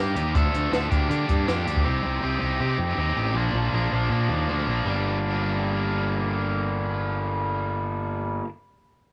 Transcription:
Already playing: G2 A#3
0.00 D#4 G4
0.15 D#2 D#4 G4, closed hi-hat
0.34 D2 F3 A3 D4 A4, kick, closed hi-hat
0.54 D2, closed hi-hat
0.71 D2 F3 A3 D4 A4, snare, closed hi-hat
0.90 D2 A#3 D4 G4, kick, closed hi-hat
1.08 D3 A#3 D4 G4, closed hi-hat
1.29 G2, kick, closed hi-hat
1.47 F2 A#3 D4 G4, snare, closed hi-hat
1.65 D2 D4 G4, closed hi-hat
1.76 kick
1.84 C2 C4 D#4 G4
2.05 C2
2.22 C2 C4 D#4 G4
2.41 C2 D#4 G4
2.60 C3 C4 D#4 G4
2.78 F2
2.97 D#2 C4 D#4 G4
3.16 A1 D#4 G4
3.34 A#1 F3 A#3 D4
3.53 A#1
3.72 A#1 F3 A#3 D4
3.92 A#1 A#3 D4
4.09 A#2 F3 A#3 D4
4.29 D#2
4.48 D2 F3 A#3 D4
4.67 A#1 A#3 D4
4.85 G1 G3 A#3
4.90 D4

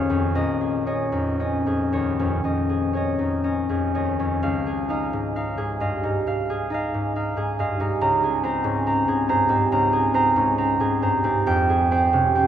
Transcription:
Already playing: A#1 D#2 G#4 C#5 F5
0.10 F2 C#4
0.35 A#1 D#5
0.61 G#4
0.87 C#4 C#5 D#5
1.12 F2 D#4
1.40 C#4 D#5
1.66 F2 G#4
1.92 D#2 C#5 D#5
2.19 F2 C#4
2.44 F2 D#5
2.70 G#4
2.93 C#4 C#5 D#5
3.18 F2 D#4
3.44 C#4 D#5
3.69 F2 G#4
3.95 D#2 C#5 D#5
4.19 F2 C#4
4.43 C#2 F5
4.66 G#4
4.89 D#4 D#5 F5
5.13 G#2
5.36 D#4 F5
5.57 G#2 G#4
5.80 G2 D#5 F5
6.03 G#2 D#4
6.27 G#2 F5
6.50 G#4
6.70 D#4 D#5
6.74 F5
6.94 G#2
7.16 D#4 F5
7.36 G#2 G#4
7.59 G2 D#5 F5
7.80 G#2 D#4
8.01 C#2 A#5
8.23 G#4
8.43 C4 C5 A#5
8.64 G#2 C#4
8.87 C4 A#5
9.08 G#2 G#4
9.29 G2 C5 A#5
9.49 G#2 C4
9.72 C#2 A#5
9.93 G#4
10.14 C4 C5 A#5
10.36 G#2 C#4
10.58 C4 A#5
10.80 G#2 G#4
11.02 G2 C5 A#5
11.24 G#2 C4
11.46 F2 G5
11.69 G#4
11.91 C4 C5 G5
12.13 C3 C#4
12.35 C4 G5

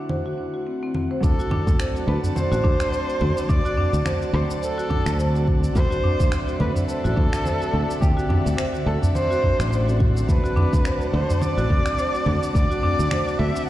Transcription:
Already playing: D3 F#3 A3 C4 D4 E4 A4 F#5
0.09 C5, low conga
0.26 F#4
0.38 D4
0.54 F#4
0.67 C4
0.83 C4
0.94 C4, low conga
1.11 C5
1.20 D2 F#3 A3 C4 D4 A4 D5 F#5 A5, kick, shaker
1.25 A4
1.40 F#4, shaker
1.50 D4, udu, low conga
1.67 D2 D4, kick, shaker
1.79 C5, finger snap, shaker
1.95 F#4, shaker
2.05 D2 F#3 A3 C4 D4 B4
2.09 A4
2.23 D4, udu, shaker
2.35 C5, low conga, shaker
2.52 A1 F#4, shaker
2.64 D2 D4, kick
2.80 D4, finger snap, shaker
2.92 C5, shaker
3.08 F#4, shaker
3.21 D2 F#4, low conga
3.37 D4, shaker
3.47 D2 F#3 A3 C4 D4 A4 D5, kick, shaker
3.65 F#4, shaker
3.77 D4, udu
3.93 D2 D4, shaker
4.06 C5, finger snap, low conga, shaker
4.22 F#4, shaker
4.32 D2 F#3 A3 C4 D4 A4 C5
4.50 D4, shaker
4.62 A4 C5, shaker
4.78 F#4, shaker
4.88 F#3 A3 C4 D4, kick, udu, low conga
4.92 A4
5.06 D2 D4, finger snap, shaker
5.18 C5, shaker
5.34 F#4, shaker
5.47 F#4, kick
5.62 D4, shaker
5.73 D2 F#3 A3 C4 D4 C5 E5, kick, low conga, shaker
5.77 A4
5.91 F#4, shaker
6.03 D4, udu
6.20 D2 D4, kick, shaker
6.32 C5, finger snap, shaker
6.48 F#4, shaker
6.58 D2 F#3 A3 C4 D4 B4, low conga
6.62 A4
6.75 D4, udu, shaker
6.88 A4 C5, shaker
7.04 A1 F#4, shaker
7.16 D2 D4, kick
7.32 D4, finger snap, shaker
7.44 C5, low conga, shaker
7.60 F#4, shaker
7.73 D2 F#4
7.88 D4, shaker
8.00 D2 D3 A3 C4 D4 G4 A4, kick, shaker
8.17 F#4, shaker
8.29 D4, udu, low conga
8.45 D2 D4, shaker
8.57 C5, finger snap, shaker
8.73 F#4, shaker
8.86 D2 F#3 A3 C4 D4 A4
9.02 D4, udu, shaker
9.14 C5, low conga, shaker
9.30 F#4, shaker
9.42 F#3 A3 C4 D4 A4, kick, udu
9.59 A1 D4, finger snap, shaker
9.71 C5, shaker
9.87 F#3 A3 C4 D4 F#4 A4, shaker
10.00 F#4, kick, low conga
10.15 D4, shaker
10.27 D2 F#3 A3 C4 D4 A4 B4 A5, kick, shaker
10.44 F#4, shaker
10.56 D4, udu, low conga
10.73 D2 D4, kick, shaker
10.85 C5, finger snap, shaker
11.01 F#4, shaker
11.11 D2 F#3 A3 C4 D4 C5
11.15 A4
11.29 D4, udu, shaker
11.41 C5 D5, low conga, shaker
11.58 A1 F#4, shaker
11.70 D2 D4, kick
11.86 D4, finger snap, shaker
11.98 C5, shaker
12.14 F#4, shaker
12.26 D2 F#4, low conga
12.43 D4, shaker
12.53 D2 F#3 A3 C4 D4 D5, kick, shaker
12.57 A4
12.71 F#4, shaker
12.83 D4, udu
12.99 D2 D4, shaker
13.11 C5, finger snap, low conga, shaker
13.27 F#4, shaker
13.39 D2 F#3 A3 C4 D4 A4 E5
13.56 D4, shaker

